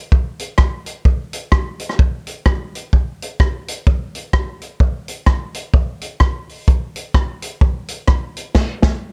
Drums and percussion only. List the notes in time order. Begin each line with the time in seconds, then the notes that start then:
0.12 kick
0.39 closed hi-hat
0.58 kick, cross-stick
0.86 closed hi-hat
1.05 kick
1.33 closed hi-hat
1.52 kick, cross-stick
1.80 closed hi-hat
1.89 cross-stick
1.99 kick
2.27 closed hi-hat
2.46 kick, cross-stick
2.75 closed hi-hat
2.93 kick
3.22 closed hi-hat
3.40 kick, cross-stick
3.68 closed hi-hat
3.87 kick
4.15 closed hi-hat
4.33 kick, cross-stick
4.62 closed hi-hat
4.80 kick
5.08 closed hi-hat
5.26 kick, cross-stick
5.54 closed hi-hat
5.74 kick
6.01 closed hi-hat
6.20 kick, cross-stick
6.49 open hi-hat
6.68 kick, hi-hat pedal
6.96 closed hi-hat
7.14 kick, cross-stick
7.42 closed hi-hat
7.61 kick
7.88 closed hi-hat
8.08 kick, cross-stick
8.37 closed hi-hat
8.55 kick, snare, crash
8.82 kick, snare